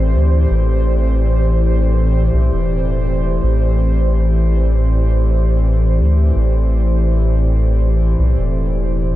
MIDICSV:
0, 0, Header, 1, 3, 480
1, 0, Start_track
1, 0, Key_signature, 0, "minor"
1, 0, Tempo, 731707
1, 331, Time_signature, 4, 2, 24, 8
1, 6008, End_track
2, 0, Start_track
2, 0, Title_t, "Analog synth pad"
2, 0, Program_c, 0, 89
2, 0, Note_on_c, 0, 45, 74
2, 0, Note_on_c, 0, 52, 71
2, 0, Note_on_c, 0, 60, 79
2, 0, Note_on_c, 0, 67, 70
2, 0, Note_on_c, 0, 72, 71
2, 0, Note_on_c, 0, 74, 71
2, 6008, Note_off_c, 0, 45, 0
2, 6008, Note_off_c, 0, 52, 0
2, 6008, Note_off_c, 0, 60, 0
2, 6008, Note_off_c, 0, 67, 0
2, 6008, Note_off_c, 0, 72, 0
2, 6008, Note_off_c, 0, 74, 0
2, 6008, End_track
3, 0, Start_track
3, 0, Title_t, "Sub bass"
3, 0, Program_c, 1, 38
3, 0, Note_on_c, 1, 33, 101
3, 92, Note_on_c, 1, 38, 93
3, 101, Note_off_c, 1, 33, 0
3, 305, Note_off_c, 1, 38, 0
3, 330, Note_on_c, 1, 33, 101
3, 1509, Note_off_c, 1, 33, 0
3, 1528, Note_on_c, 1, 35, 84
3, 1644, Note_off_c, 1, 35, 0
3, 1659, Note_on_c, 1, 28, 83
3, 2229, Note_off_c, 1, 28, 0
3, 2250, Note_on_c, 1, 33, 101
3, 3932, Note_on_c, 1, 38, 87
3, 3942, Note_off_c, 1, 33, 0
3, 4145, Note_off_c, 1, 38, 0
3, 4171, Note_on_c, 1, 33, 100
3, 5350, Note_off_c, 1, 33, 0
3, 5371, Note_on_c, 1, 35, 87
3, 5485, Note_off_c, 1, 35, 0
3, 5500, Note_on_c, 1, 28, 88
3, 6008, Note_off_c, 1, 28, 0
3, 6008, End_track
0, 0, End_of_file